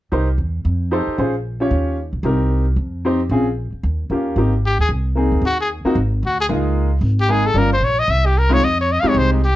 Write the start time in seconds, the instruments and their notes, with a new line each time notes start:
0.12 upright bass C2, grand piano D#4 G4 A#4 C5
0.38 upright bass E2
0.65 upright bass F2
0.91 grand piano D#4 G4 A4 C5
1.07 muted upright bass stroke
1.18 upright bass A#1, grand piano C#4 F4 G#4 C5
1.60 grand piano C#4 F4 G4 C#5
1.71 upright bass D#2
2.13 upright bass B1
2.23 upright bass C2, grand piano C4 D#4 G4 A#4
2.76 upright bass F2
3.05 grand piano C4 D#4 G4 C5
3.29 upright bass A#1, grand piano C4 C#4 F4 G#4
3.72 muted upright bass stroke
3.83 upright bass D#2
4.10 upright bass D#2, grand piano A#3 C#4 F4 G4
4.36 upright bass G#1, grand piano A#3 C4 D#4 G4
4.66 trumpet G4
4.79 upright bass D#2, trumpet G#4
4.89 upright bass C2
5.15 grand piano A#3 C4 D#4 G#4
5.32 upright bass D2
5.42 upright bass D#2
5.46 trumpet F#4
5.61 trumpet G#4
5.84 grand piano A#3 C4 D#4 F#4, muted upright bass stroke
5.95 upright bass G#1
6.23 upright bass D2, trumpet F#4
6.41 trumpet G#4
6.49 upright bass C#2, grand piano G#3 A#3 D#4 F4
7.01 upright bass G#1
7.21 trumpet G4
7.29 grand piano G#3 A#3 D#4 G#4, trumpet G#4
7.47 trumpet A4
7.54 upright bass G1, grand piano G3 A#3 C#4 F4
7.58 trumpet A#4
7.73 trumpet C5
7.80 upright bass A#1
7.84 trumpet C#5
7.99 trumpet D#5
8.08 upright bass C2, trumpet E5
8.26 trumpet G4
8.38 trumpet A#4
8.49 grand piano G#3 C4 D#4 F4, trumpet C#5
8.60 upright bass F2
8.64 trumpet D#5
8.81 trumpet C#5
8.92 trumpet D#5
9.01 grand piano G#3 C4 D#4 G4, trumpet F5, muted upright bass stroke
9.09 trumpet C#5
9.14 upright bass C2, trumpet C5
9.33 trumpet D#4
9.44 trumpet G4